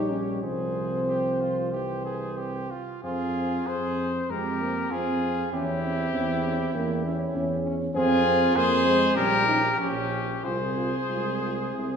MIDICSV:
0, 0, Header, 1, 6, 480
1, 0, Start_track
1, 0, Key_signature, -4, "minor"
1, 0, Tempo, 649351
1, 316, Time_signature, 4, 2, 24, 8
1, 2712, Tempo, 614754
1, 5112, Tempo, 603015
1, 7032, Tempo, 646552
1, 9118, End_track
2, 0, Start_track
2, 0, Title_t, "Trumpet"
2, 0, Program_c, 0, 56
2, 0, Note_on_c, 0, 73, 70
2, 289, Note_off_c, 0, 73, 0
2, 313, Note_on_c, 0, 72, 58
2, 1261, Note_off_c, 0, 72, 0
2, 1284, Note_on_c, 0, 72, 61
2, 1995, Note_off_c, 0, 72, 0
2, 2246, Note_on_c, 0, 68, 86
2, 2713, Note_on_c, 0, 72, 91
2, 2725, Note_off_c, 0, 68, 0
2, 3203, Note_on_c, 0, 70, 92
2, 3215, Note_off_c, 0, 72, 0
2, 3680, Note_on_c, 0, 68, 90
2, 3691, Note_off_c, 0, 70, 0
2, 4153, Note_off_c, 0, 68, 0
2, 4158, Note_on_c, 0, 67, 94
2, 5801, Note_off_c, 0, 67, 0
2, 6082, Note_on_c, 0, 68, 114
2, 6556, Note_on_c, 0, 72, 119
2, 6567, Note_off_c, 0, 68, 0
2, 7031, Note_off_c, 0, 72, 0
2, 7036, Note_on_c, 0, 70, 116
2, 7489, Note_off_c, 0, 70, 0
2, 7509, Note_on_c, 0, 67, 95
2, 7988, Note_on_c, 0, 72, 88
2, 7999, Note_off_c, 0, 67, 0
2, 9118, Note_off_c, 0, 72, 0
2, 9118, End_track
3, 0, Start_track
3, 0, Title_t, "Trumpet"
3, 0, Program_c, 1, 56
3, 0, Note_on_c, 1, 67, 69
3, 288, Note_off_c, 1, 67, 0
3, 313, Note_on_c, 1, 68, 57
3, 743, Note_off_c, 1, 68, 0
3, 799, Note_on_c, 1, 67, 66
3, 1042, Note_on_c, 1, 65, 53
3, 1053, Note_off_c, 1, 67, 0
3, 1270, Note_off_c, 1, 65, 0
3, 1275, Note_on_c, 1, 67, 63
3, 1512, Note_off_c, 1, 67, 0
3, 1516, Note_on_c, 1, 68, 60
3, 1757, Note_on_c, 1, 67, 63
3, 1768, Note_off_c, 1, 68, 0
3, 2003, Note_on_c, 1, 65, 55
3, 2014, Note_off_c, 1, 67, 0
3, 2238, Note_off_c, 1, 65, 0
3, 2242, Note_on_c, 1, 65, 72
3, 2709, Note_on_c, 1, 68, 77
3, 2720, Note_off_c, 1, 65, 0
3, 3073, Note_off_c, 1, 68, 0
3, 3206, Note_on_c, 1, 67, 74
3, 3680, Note_on_c, 1, 65, 74
3, 3692, Note_off_c, 1, 67, 0
3, 4156, Note_off_c, 1, 65, 0
3, 4161, Note_on_c, 1, 64, 79
3, 5803, Note_off_c, 1, 64, 0
3, 6079, Note_on_c, 1, 65, 101
3, 6563, Note_on_c, 1, 68, 108
3, 6575, Note_off_c, 1, 65, 0
3, 7029, Note_on_c, 1, 67, 93
3, 7040, Note_off_c, 1, 68, 0
3, 7501, Note_on_c, 1, 61, 78
3, 7512, Note_off_c, 1, 67, 0
3, 7992, Note_off_c, 1, 61, 0
3, 7995, Note_on_c, 1, 68, 77
3, 9118, Note_off_c, 1, 68, 0
3, 9118, End_track
4, 0, Start_track
4, 0, Title_t, "French horn"
4, 0, Program_c, 2, 60
4, 0, Note_on_c, 2, 63, 94
4, 71, Note_on_c, 2, 61, 72
4, 82, Note_off_c, 2, 63, 0
4, 312, Note_off_c, 2, 61, 0
4, 316, Note_on_c, 2, 60, 77
4, 1737, Note_off_c, 2, 60, 0
4, 2244, Note_on_c, 2, 60, 60
4, 2349, Note_off_c, 2, 60, 0
4, 2481, Note_on_c, 2, 60, 57
4, 2585, Note_off_c, 2, 60, 0
4, 2708, Note_on_c, 2, 60, 56
4, 2819, Note_off_c, 2, 60, 0
4, 2957, Note_on_c, 2, 60, 53
4, 3067, Note_off_c, 2, 60, 0
4, 3197, Note_on_c, 2, 60, 56
4, 3307, Note_off_c, 2, 60, 0
4, 3443, Note_on_c, 2, 60, 56
4, 3551, Note_off_c, 2, 60, 0
4, 3680, Note_on_c, 2, 60, 62
4, 3788, Note_off_c, 2, 60, 0
4, 3922, Note_on_c, 2, 60, 61
4, 4029, Note_off_c, 2, 60, 0
4, 4166, Note_on_c, 2, 61, 64
4, 4272, Note_off_c, 2, 61, 0
4, 4402, Note_on_c, 2, 61, 63
4, 4508, Note_off_c, 2, 61, 0
4, 4633, Note_on_c, 2, 61, 66
4, 4741, Note_off_c, 2, 61, 0
4, 4874, Note_on_c, 2, 61, 66
4, 4981, Note_off_c, 2, 61, 0
4, 5112, Note_on_c, 2, 61, 68
4, 5221, Note_off_c, 2, 61, 0
4, 5357, Note_on_c, 2, 61, 69
4, 5464, Note_off_c, 2, 61, 0
4, 5592, Note_on_c, 2, 61, 73
4, 5701, Note_off_c, 2, 61, 0
4, 5837, Note_on_c, 2, 61, 78
4, 5944, Note_off_c, 2, 61, 0
4, 6068, Note_on_c, 2, 60, 82
4, 6177, Note_off_c, 2, 60, 0
4, 6308, Note_on_c, 2, 60, 80
4, 6417, Note_off_c, 2, 60, 0
4, 6550, Note_on_c, 2, 60, 75
4, 6658, Note_off_c, 2, 60, 0
4, 6785, Note_on_c, 2, 60, 72
4, 6894, Note_off_c, 2, 60, 0
4, 7024, Note_on_c, 2, 61, 69
4, 7129, Note_off_c, 2, 61, 0
4, 7258, Note_on_c, 2, 61, 66
4, 7365, Note_off_c, 2, 61, 0
4, 7495, Note_on_c, 2, 61, 70
4, 7605, Note_off_c, 2, 61, 0
4, 7739, Note_on_c, 2, 61, 57
4, 7851, Note_off_c, 2, 61, 0
4, 7984, Note_on_c, 2, 65, 56
4, 8095, Note_off_c, 2, 65, 0
4, 8230, Note_on_c, 2, 65, 54
4, 8339, Note_off_c, 2, 65, 0
4, 8468, Note_on_c, 2, 65, 51
4, 8577, Note_off_c, 2, 65, 0
4, 8706, Note_on_c, 2, 65, 48
4, 8816, Note_off_c, 2, 65, 0
4, 8951, Note_on_c, 2, 64, 49
4, 9059, Note_off_c, 2, 64, 0
4, 9118, End_track
5, 0, Start_track
5, 0, Title_t, "Euphonium"
5, 0, Program_c, 3, 58
5, 0, Note_on_c, 3, 55, 66
5, 319, Note_on_c, 3, 53, 62
5, 330, Note_off_c, 3, 55, 0
5, 1281, Note_on_c, 3, 52, 58
5, 1292, Note_off_c, 3, 53, 0
5, 2008, Note_off_c, 3, 52, 0
5, 3203, Note_on_c, 3, 56, 66
5, 3447, Note_on_c, 3, 58, 63
5, 3458, Note_off_c, 3, 56, 0
5, 3681, Note_off_c, 3, 58, 0
5, 3686, Note_on_c, 3, 60, 74
5, 4162, Note_on_c, 3, 61, 84
5, 4173, Note_off_c, 3, 60, 0
5, 4396, Note_off_c, 3, 61, 0
5, 4400, Note_on_c, 3, 60, 85
5, 5119, Note_on_c, 3, 58, 89
5, 5131, Note_off_c, 3, 60, 0
5, 5357, Note_off_c, 3, 58, 0
5, 5361, Note_on_c, 3, 61, 90
5, 6064, Note_off_c, 3, 61, 0
5, 6074, Note_on_c, 3, 60, 107
5, 6544, Note_off_c, 3, 60, 0
5, 6558, Note_on_c, 3, 58, 84
5, 6790, Note_off_c, 3, 58, 0
5, 6795, Note_on_c, 3, 56, 83
5, 7038, Note_on_c, 3, 55, 81
5, 7049, Note_off_c, 3, 56, 0
5, 7260, Note_off_c, 3, 55, 0
5, 7265, Note_on_c, 3, 63, 79
5, 7370, Note_off_c, 3, 63, 0
5, 7503, Note_on_c, 3, 61, 70
5, 7983, Note_off_c, 3, 61, 0
5, 7997, Note_on_c, 3, 60, 70
5, 8419, Note_off_c, 3, 60, 0
5, 8471, Note_on_c, 3, 56, 62
5, 8922, Note_off_c, 3, 56, 0
5, 8956, Note_on_c, 3, 60, 75
5, 9118, Note_off_c, 3, 60, 0
5, 9118, End_track
6, 0, Start_track
6, 0, Title_t, "Tuba"
6, 0, Program_c, 4, 58
6, 0, Note_on_c, 4, 34, 71
6, 286, Note_off_c, 4, 34, 0
6, 316, Note_on_c, 4, 36, 59
6, 1979, Note_off_c, 4, 36, 0
6, 2248, Note_on_c, 4, 41, 71
6, 2659, Note_off_c, 4, 41, 0
6, 2715, Note_on_c, 4, 41, 69
6, 3146, Note_off_c, 4, 41, 0
6, 3205, Note_on_c, 4, 41, 69
6, 3629, Note_off_c, 4, 41, 0
6, 3688, Note_on_c, 4, 41, 69
6, 4106, Note_off_c, 4, 41, 0
6, 4163, Note_on_c, 4, 40, 78
6, 4581, Note_off_c, 4, 40, 0
6, 4637, Note_on_c, 4, 40, 81
6, 5057, Note_off_c, 4, 40, 0
6, 5119, Note_on_c, 4, 40, 87
6, 5540, Note_off_c, 4, 40, 0
6, 5598, Note_on_c, 4, 40, 86
6, 6020, Note_off_c, 4, 40, 0
6, 6080, Note_on_c, 4, 41, 96
6, 6500, Note_off_c, 4, 41, 0
6, 6556, Note_on_c, 4, 41, 95
6, 6977, Note_off_c, 4, 41, 0
6, 7031, Note_on_c, 4, 34, 89
6, 7440, Note_off_c, 4, 34, 0
6, 7496, Note_on_c, 4, 34, 78
6, 7931, Note_off_c, 4, 34, 0
6, 7991, Note_on_c, 4, 36, 74
6, 8349, Note_off_c, 4, 36, 0
6, 8475, Note_on_c, 4, 36, 65
6, 8897, Note_off_c, 4, 36, 0
6, 8952, Note_on_c, 4, 36, 59
6, 9118, Note_off_c, 4, 36, 0
6, 9118, End_track
0, 0, End_of_file